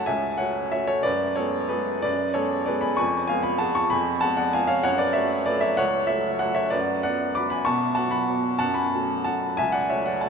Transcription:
upright piano
Already playing: F#2 A3 C#4 F#4 C#5 E5 F#5 A5
0.06 C#2 E5 G#5
0.38 A3 C#4 F#4 C#5 F#5
0.72 A3 C#4 F#4 C#5 E5
0.87 A4 C#5
1.03 F#2 B4 D5
1.36 G#3 B3 G#4 A4 C#5
1.69 G#3 B3 G#4 B4
2.02 F#2 B4 D5
2.34 G#3 B3 G#4 A4 C#5
2.66 G#3 B3 G#4 B4 D5
2.81 G#5 B5
2.97 F2 G#5 C#6
3.27 G#3 B3 G#4 F5 G#5
3.43 G#5 B5
3.58 G#3 B3 G#4 F#5 A5
3.75 A5 C#6
3.90 F2 G#5 B5
4.21 G#3 B3 G#4 F#5 A5
4.37 D5 F#5
4.53 G#3 B3 G#4 F5 G#5
4.67 C#5 F5
4.83 F#2 C#5 F#5
4.98 B4 D5
5.13 F#3 A3 A4 C#5 E5
5.46 F#3 A3 A4 B4 D5
5.61 C#5 E5
5.77 C#2 C#5 F#5
6.07 F#3 A3 A4 C#5 E5
6.39 F#3 A3 A4 C#5 F#5
6.55 C#5 E5
6.70 F#2 B4 D5
7.03 F#3 B3 F#4 D5 F#5
7.35 F#3 B3 F#4 B5 D6
7.50 G#5 B5
7.65 B2 A5 C#6
7.95 F#3 B3 F#4 F#5 A5
8.11 F#5 B5
8.30 F#3 B3 F#4
8.59 F#2 F#5 A5
8.74 G#5 B5
8.94 F#3 A3 F#4
9.24 F#3 A3 F#4 F#5 A5
9.57 C#2 E5 G#5
9.72 D5 F#5
9.89 F#3 A3 F#4 C#5 E5
10.06 D5 F#5
10.21 F#3 A3 F#4 F#5 A5

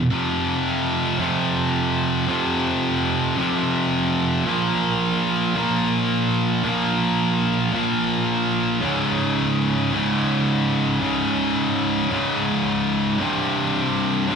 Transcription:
distorted electric guitar
0.00 B2
0.10 F2 C3 F3
1.19 F2 C3 F3
2.27 F2 C3 F3
3.36 F2 C3 F3
4.45 A#2 F3 A#3
5.55 A#2 F3 A#3
6.64 A#2 F3 A#3
7.73 A#2 F3 A#3
8.81 C#2 G#2 C#3
9.91 C#2 G#2 C#3
11.00 C#2 G#2 C#3
12.10 C#2 G#2 C#3
13.19 C2 G2 C3
14.28 C2 G2 C3

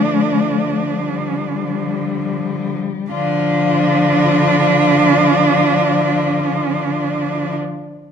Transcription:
cello
Already playing: D3 F3 A3 D4
0.97 G3
3.11 D3 F3 D4 F4

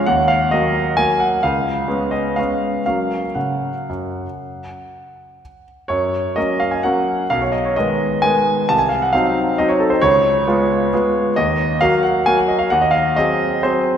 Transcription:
grand piano
0.06 D#2 F#5
0.28 F5
0.51 F#3 A#3 D#5
0.97 F#3 A#3 G#5
1.20 F#5
1.43 C#2 F5
1.88 G#3 B3 C#4
2.11 D#5
2.36 G#3 B3 C#4 F5
2.86 F#3 A#3 C#4 F5
3.35 C#3 F#5
3.89 F#2
5.88 F#2 C#5
6.36 F#3 A#3 C#4 D#5
6.60 F5
6.71 G#5
6.83 F#3 A#3 C#4 F#5
7.30 B1 F5
7.41 C#5
7.52 D#5
7.65 C#5
7.76 D#3 G#3 B3 D#5
8.22 D#3 G#3 B3 G#5
8.69 C2 A5
8.79 G#5
8.89 F5
9.02 F#5
9.13 F#3 C4 D#4 F5
9.58 F#3 C4 D#4 D#5
9.69 C#5
9.80 A4
9.90 C5
10.01 C#2 C#5
10.47 G#3 B3 F4
10.93 G#3 B3 F4
11.36 D#2 D#5
11.81 F#3 A#3 F#4 F5
12.03 F#5
12.26 F#3 A#3 F#4 G#5
12.38 F#5
12.48 D#5
12.59 F5
12.70 D#2 F#5
12.82 D#5
12.91 F5
13.16 F#3 C4 G#4 D#5
13.63 F#3 C4 G#4 C5

